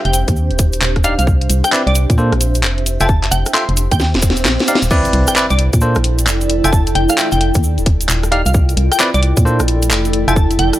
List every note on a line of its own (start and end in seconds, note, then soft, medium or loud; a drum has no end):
0.00 5.30 D4 medium
0.00 5.30 G4 medium
0.00 5.30 C5 medium
0.00 0.36 E5 medium
0.05 0.25 F1 loud
0.05 0.11 G5 medium
0.05 open hi-hat medium
0.13 0.23 G5 medium
0.13 open hi-hat loud
0.13 cabasa medium
0.28 0.52 D#2 medium
0.28 kick loud
0.28 closed hi-hat medium
0.28 cabasa medium
0.36 cabasa soft
0.51 0.80 D#1 medium
0.51 closed hi-hat soft
0.59 kick loud
0.59 open hi-hat loud
0.59 cabasa medium
0.73 closed hi-hat medium
0.73 cabasa medium
0.82 1.16 D#1 medium
0.82 clap loud
0.82 cabasa soft
0.96 kick medium
0.96 cross-stick medium
0.96 closed hi-hat soft
1.04 1.13 D#4 medium
1.04 1.13 G4 medium
1.04 1.13 D5 medium
1.04 1.13 F5 medium
1.04 1.14 F5 medium
1.04 open hi-hat loud
1.04 cabasa medium
1.19 1.48 C2 medium
1.19 1.24 F5 medium
1.19 closed hi-hat medium
1.19 cabasa soft
1.27 kick loud
1.27 cabasa soft
1.41 closed hi-hat medium
1.50 1.63 C2 loud
1.50 open hi-hat loud
1.50 cabasa medium
1.58 4.00 E5 medium
1.64 1.72 G5 medium
1.64 cross-stick medium
1.64 closed hi-hat medium
1.64 cabasa soft
1.72 1.82 C4 loud
1.72 1.82 E4 medium
1.72 1.82 B4 medium
1.72 1.82 D5 loud
1.72 clap loud
1.72 cabasa soft
1.87 2.06 C2 loud
1.87 1.95 D5 medium
1.87 closed hi-hat medium
1.95 open hi-hat loud
1.95 cabasa medium
2.10 2.34 A#2 medium
2.10 kick loud
2.10 closed hi-hat medium
2.10 cabasa soft
2.18 2.32 A#3 medium
2.18 2.32 D4 medium
2.18 2.32 A4 medium
2.18 2.32 C5 medium
2.18 cabasa soft
2.32 2.65 A#1 medium
2.32 cross-stick medium
2.32 closed hi-hat soft
2.41 open hi-hat loud
2.41 cabasa medium
2.55 closed hi-hat medium
2.55 cabasa soft
2.63 2.98 F1 medium
2.63 clap loud
2.63 cabasa soft
2.78 closed hi-hat soft
2.86 open hi-hat loud
2.86 cabasa medium
3.00 3.30 F1 medium
3.00 3.06 F4 medium
3.00 3.06 A4 medium
3.00 3.06 E5 medium
3.00 3.06 G5 medium
3.00 3.30 A5 medium
3.00 closed hi-hat medium
3.00 cabasa soft
3.09 kick loud
3.09 cabasa soft
3.24 clap medium
3.24 closed hi-hat medium
3.31 3.45 F1 loud
3.31 3.45 G5 medium
3.31 open hi-hat loud
3.31 cabasa medium
3.46 cross-stick medium
3.46 closed hi-hat medium
3.46 cabasa soft
3.54 3.63 F4 medium
3.54 3.63 A4 medium
3.54 3.63 E5 medium
3.54 3.63 G5 medium
3.54 3.89 C6 medium
3.54 clap loud
3.54 cabasa soft
3.69 3.88 F1 loud
3.69 open hi-hat medium
3.77 open hi-hat loud
3.77 cabasa medium
3.91 4.16 D#2 loud
3.91 3.97 G5 medium
3.91 kick loud
3.91 closed hi-hat medium
3.91 cabasa soft
3.99 4.09 G5 medium
3.99 snare medium
3.99 swell medium
3.99 cabasa soft
4.14 4.47 D#1 medium
4.14 snare medium
4.14 closed hi-hat soft
4.22 kick loud
4.22 open hi-hat loud
4.22 cabasa medium
4.30 snare medium
4.37 closed hi-hat medium
4.37 cabasa medium
4.45 4.58 A#1 medium
4.45 snare medium
4.45 clap loud
4.45 cabasa soft
4.60 snare loud
4.60 closed hi-hat soft
4.68 4.77 D#4 medium
4.68 4.77 G4 medium
4.68 4.77 D5 medium
4.68 4.77 F5 medium
4.68 open hi-hat loud
4.68 cabasa medium
4.75 snare loud
4.82 4.90 D#1 medium
4.82 closed hi-hat medium
4.82 cabasa medium
4.91 5.33 C4 loud
4.91 7.63 E4 loud
4.91 5.33 E4 medium
4.91 5.33 B4 medium
4.91 5.33 D5 loud
4.91 kick loud
4.91 crash loud
4.91 impact medium
4.91 cabasa medium
5.05 7.64 A4 medium
5.05 closed hi-hat medium
5.05 cabasa soft
5.11 5.26 C2 loud
5.11 7.64 D5 medium
5.11 open hi-hat loud
5.27 5.36 G5 medium
5.27 cross-stick medium
5.27 closed hi-hat medium
5.27 cabasa medium
5.33 5.45 C4 loud
5.33 5.45 E4 medium
5.33 5.45 B4 medium
5.33 5.45 D5 loud
5.33 10.79 G5 loud
5.33 clap loud
5.33 cabasa medium
5.50 5.70 C2 loud
5.50 5.58 D5 medium
5.50 closed hi-hat medium
5.50 cabasa soft
5.59 open hi-hat loud
5.73 5.98 A#2 medium
5.73 kick loud
5.73 closed hi-hat medium
5.73 cabasa medium
5.81 5.96 A#3 medium
5.81 5.96 D4 medium
5.81 5.96 A4 medium
5.81 5.96 C5 medium
5.81 cabasa medium
5.95 6.29 A#1 medium
5.95 cross-stick medium
5.95 closed hi-hat soft
5.95 cabasa soft
6.04 open hi-hat loud
6.19 closed hi-hat medium
6.19 cabasa medium
6.27 6.62 F1 medium
6.27 clap loud
6.27 cabasa medium
6.41 closed hi-hat soft
6.41 cabasa soft
6.50 open hi-hat loud
6.64 6.94 F1 medium
6.64 6.70 F4 medium
6.64 6.70 A4 medium
6.64 6.69 E5 medium
6.64 6.70 G5 loud
6.64 6.94 A5 loud
6.64 closed hi-hat medium
6.64 cabasa medium
6.73 kick loud
6.73 cabasa medium
6.87 closed hi-hat medium
6.87 cabasa soft
6.95 7.08 F1 loud
6.95 7.07 G5 medium
6.95 open hi-hat loud
7.09 7.18 F5 loud
7.09 cross-stick medium
7.09 closed hi-hat medium
7.09 cabasa medium
7.18 7.27 F4 medium
7.18 7.27 A4 medium
7.18 7.27 E5 medium
7.18 7.27 G5 medium
7.18 clap loud
7.18 cabasa medium
7.32 7.52 F1 loud
7.32 7.38 G5 medium
7.32 open hi-hat medium
7.32 cabasa soft
7.41 7.50 G5 medium
7.41 open hi-hat loud
7.54 7.79 D#2 medium
7.54 kick loud
7.54 closed hi-hat medium
7.54 cabasa medium
7.63 cabasa medium
7.78 8.07 D#1 medium
7.78 closed hi-hat soft
7.78 cabasa soft
7.86 kick loud
7.86 open hi-hat loud
8.01 closed hi-hat medium
8.01 cabasa medium
8.09 8.44 D#1 medium
8.09 clap loud
8.09 cabasa medium
8.23 cross-stick medium
8.23 closed hi-hat soft
8.23 cabasa soft
8.32 8.41 D#4 medium
8.32 8.41 G4 medium
8.32 8.41 D5 medium
8.32 8.41 F5 medium
8.32 open hi-hat loud
8.46 8.76 C2 medium
8.46 8.51 F5 medium
8.46 closed hi-hat medium
8.46 cabasa medium
8.54 10.79 E4 medium
8.54 kick loud
8.54 cabasa medium
8.64 10.79 D5 medium
8.69 closed hi-hat medium
8.69 cabasa soft
8.73 8.90 C2 loud
8.73 10.79 A4 medium
8.77 open hi-hat loud
8.92 8.99 G5 loud
8.92 cross-stick medium
8.92 closed hi-hat medium
8.92 cabasa medium
8.99 9.09 C4 loud
8.99 9.09 E4 medium
8.99 9.09 B4 medium
8.99 9.09 D5 loud
8.99 clap loud
8.99 cabasa medium
9.14 9.34 C2 loud
9.14 9.22 D5 medium
9.14 closed hi-hat medium
9.14 cabasa soft
9.23 open hi-hat loud
9.37 9.61 A#2 medium
9.37 kick loud
9.37 closed hi-hat medium
9.37 cabasa medium
9.45 9.60 A#3 medium
9.45 9.60 D4 medium
9.45 9.60 A4 medium
9.45 9.60 C5 medium
9.45 cabasa medium
9.59 9.92 A#1 medium
9.59 cross-stick medium
9.59 closed hi-hat soft
9.59 cabasa soft
9.68 open hi-hat loud
9.82 closed hi-hat medium
9.82 cabasa medium
9.91 10.25 F1 medium
9.91 clap loud
9.91 cabasa medium
10.05 closed hi-hat soft
10.05 cabasa soft
10.13 open hi-hat loud
10.28 10.57 F1 medium
10.28 10.33 F4 medium
10.28 10.33 A4 medium
10.28 10.33 E5 medium
10.28 10.33 G5 loud
10.28 10.57 A5 medium
10.28 closed hi-hat medium
10.28 cabasa medium
10.36 kick loud
10.36 cabasa medium
10.51 closed hi-hat medium
10.51 cabasa soft
10.59 10.72 F1 loud
10.59 10.73 G5 medium
10.59 open hi-hat loud
10.73 cross-stick medium
10.73 closed hi-hat medium
10.73 cabasa medium